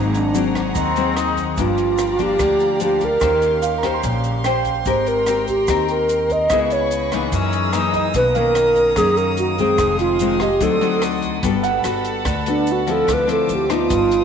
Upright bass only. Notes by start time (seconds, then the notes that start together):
Already playing: G#1
0.76 D#2
1.57 G1
2.39 D2
3.22 D#2
4.04 A#1
4.86 G#1
5.68 D#2
6.50 C#2
7.32 F#2
8.14 B1
8.97 F#2
9.79 F1
10.61 D2
11.43 G1
11.85 G1
12.25 D2
13.08 D2
13.50 D2
13.90 G1